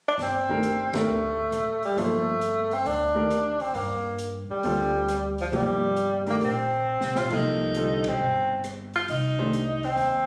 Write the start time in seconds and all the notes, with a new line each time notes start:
0.08 D4
0.18 G1, snare, open hi-hat
0.22 C4
0.49 D#3 A3 D4 G4 A#4, kick
0.63 closed hi-hat
0.92 G#1 D#3 A3 D4 G4 A#4, snare, ride
1.07 D2
1.51 A1, cross-stick, closed hi-hat
1.83 G3, open hi-hat
1.97 G1 F3 A3 A#3 D#4 A4 C5, open hi-hat
2.41 closed hi-hat
2.71 C4, open hi-hat
2.85 D2 D4, open hi-hat
3.15 D#3 A3 D4 G4 A#4
3.31 cross-stick, closed hi-hat
3.60 C4, muted upright bass stroke, open hi-hat
3.74 G2 A#3, open hi-hat
4.18 closed hi-hat
4.49 G3, muted upright bass stroke
4.63 D2 D3 G3 C4 F4 A4, open hi-hat
5.08 cross-stick, closed hi-hat
5.38 F3, open hi-hat
5.52 G1 C3 F3 G3 A#3 D#4 G4, open hi-hat
5.96 closed hi-hat
6.26 D#3 A3 A#3 D4 G4 A#4, open hi-hat
6.41 A#1 C4, open hi-hat
7.00 C2, snare
7.15 A#1 F4, snare
7.30 C2 C3 F3 A#3 D#4 A4, kick, crash
7.34 D#4
7.74 D3 G3 C4 F4 A4, closed hi-hat
8.04 B1, kick, ride
8.08 C4
8.18 G1
8.64 cross-stick, closed hi-hat
8.94 F4, open hi-hat
9.08 C2 D#4, open hi-hat
9.38 D#3 A3 D4 G4 C5
9.53 closed hi-hat
9.83 C4, open hi-hat
9.96 D#2, open hi-hat